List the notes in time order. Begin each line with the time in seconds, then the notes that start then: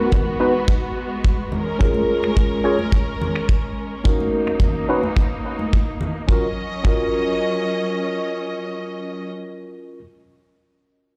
Already playing: G#3 B3 D#4 F#4 A#4
0.12 kick, low conga
0.40 B3 D#4 F#4 B4
0.68 kick
1.24 kick
1.52 C#4 A#4, low conga
1.79 C#4 F4 G#4 A#4, kick
1.94 high conga
2.23 finger snap, high conga
2.37 kick
2.64 C#4 F4 G#4 C#5
2.79 high conga
2.92 kick
3.22 low conga
3.36 finger snap
3.49 kick
4.04 A#3 C#4 D#4 F#4 A#4, kick
4.20 high conga
4.47 finger snap, high conga
4.60 kick, low conga
4.89 C#4 D#4 F#4 B4
5.03 high conga
5.17 kick
5.59 high conga
5.73 kick
6.01 low conga
6.28 F#3 C#4 F4 F#4 A#4 D#5, kick
6.84 C#4 F4 F#4 A#4, kick